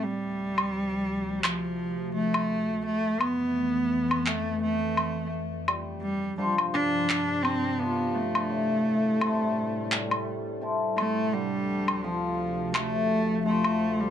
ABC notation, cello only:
X:1
M:4/4
L:1/16
Q:"Swing 16ths" 1/4=85
K:Ddor
V:1 name="Cello"
G,8 F,4 A,4 | A,2 B,6 A,2 A,4 z2 | z2 G,2 G,2 D4 C2 B,2 A,2- | A,8- A,2 z4 A,2 |
G,4 F,4 A,4 A,3 G, |]